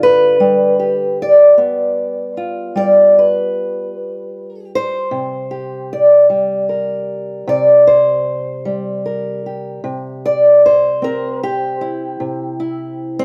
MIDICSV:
0, 0, Header, 1, 2, 480
1, 0, Start_track
1, 0, Tempo, 786370
1, 250, Time_signature, 12, 3, 24, 8
1, 8086, End_track
2, 0, Start_track
2, 0, Title_t, "Steel-string acoustic guitar"
2, 0, Program_c, 0, 25
2, 0, Note_on_c, 0, 43, 83
2, 0, Note_on_c, 0, 50, 58
2, 0, Note_on_c, 0, 65, 47
2, 19, Note_on_c, 0, 71, 108
2, 218, Note_off_c, 0, 65, 0
2, 219, Note_off_c, 0, 43, 0
2, 245, Note_on_c, 0, 55, 72
2, 485, Note_on_c, 0, 67, 47
2, 734, Note_off_c, 0, 71, 0
2, 745, Note_on_c, 0, 74, 84
2, 960, Note_off_c, 0, 50, 0
2, 962, Note_on_c, 0, 59, 63
2, 1448, Note_on_c, 0, 65, 47
2, 1679, Note_off_c, 0, 55, 0
2, 1682, Note_on_c, 0, 55, 66
2, 1684, Note_off_c, 0, 74, 0
2, 1691, Note_on_c, 0, 74, 90
2, 1930, Note_off_c, 0, 74, 0
2, 1945, Note_on_c, 0, 71, 65
2, 2404, Note_off_c, 0, 59, 0
2, 2896, Note_off_c, 0, 71, 0
2, 2901, Note_on_c, 0, 72, 105
2, 3096, Note_off_c, 0, 67, 0
2, 3098, Note_off_c, 0, 65, 0
2, 3120, Note_on_c, 0, 48, 63
2, 3362, Note_on_c, 0, 67, 48
2, 3614, Note_off_c, 0, 72, 0
2, 3618, Note_on_c, 0, 74, 70
2, 3818, Note_off_c, 0, 55, 0
2, 3844, Note_on_c, 0, 55, 60
2, 4082, Note_off_c, 0, 74, 0
2, 4084, Note_on_c, 0, 70, 39
2, 4560, Note_off_c, 0, 48, 0
2, 4562, Note_on_c, 0, 48, 73
2, 4569, Note_off_c, 0, 70, 0
2, 4572, Note_on_c, 0, 74, 90
2, 4803, Note_off_c, 0, 74, 0
2, 4806, Note_on_c, 0, 72, 81
2, 5279, Note_off_c, 0, 55, 0
2, 5282, Note_on_c, 0, 55, 62
2, 5525, Note_off_c, 0, 72, 0
2, 5528, Note_on_c, 0, 70, 45
2, 5766, Note_off_c, 0, 67, 0
2, 5775, Note_on_c, 0, 67, 42
2, 5977, Note_off_c, 0, 48, 0
2, 5979, Note_off_c, 0, 70, 0
2, 6005, Note_on_c, 0, 48, 70
2, 6260, Note_on_c, 0, 74, 88
2, 6495, Note_off_c, 0, 74, 0
2, 6505, Note_on_c, 0, 72, 81
2, 6727, Note_on_c, 0, 60, 62
2, 6738, Note_off_c, 0, 67, 0
2, 6740, Note_on_c, 0, 70, 83
2, 6975, Note_off_c, 0, 70, 0
2, 6979, Note_on_c, 0, 67, 89
2, 7207, Note_off_c, 0, 55, 0
2, 7210, Note_on_c, 0, 64, 47
2, 7218, Note_off_c, 0, 72, 0
2, 7440, Note_off_c, 0, 48, 0
2, 7447, Note_on_c, 0, 48, 67
2, 7682, Note_off_c, 0, 64, 0
2, 7690, Note_on_c, 0, 64, 49
2, 8046, Note_off_c, 0, 60, 0
2, 8053, Note_on_c, 0, 60, 100
2, 8086, Note_off_c, 0, 48, 0
2, 8086, Note_off_c, 0, 60, 0
2, 8086, Note_off_c, 0, 64, 0
2, 8086, Note_off_c, 0, 67, 0
2, 8086, End_track
0, 0, End_of_file